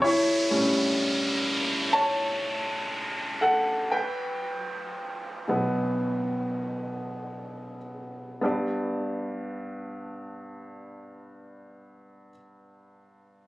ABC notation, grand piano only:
X:1
M:4/4
L:1/8
Q:1/4=54
K:G
V:1 name="Grand piano"
[E^c]3 z [ca]3 [Af] | [Bg]6- [Bg] z | [B,DGd]8 |]
V:2 name="Grand piano" clef=bass
z [A,,G,^C] z6 | z3 [B,,F,B,]4- [B,,F,B,] | G,,8 |]